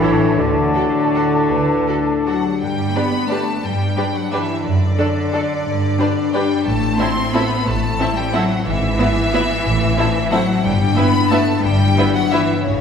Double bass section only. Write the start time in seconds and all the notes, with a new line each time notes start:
0.03 A1
0.39 D2
1.51 D2
2.62 G2
3.64 G2
4.65 F#2
5.66 G2
6.66 A1
7.67 A1
8.66 G#1
9.65 A1
10.64 G1
11.64 G1
12.65 A1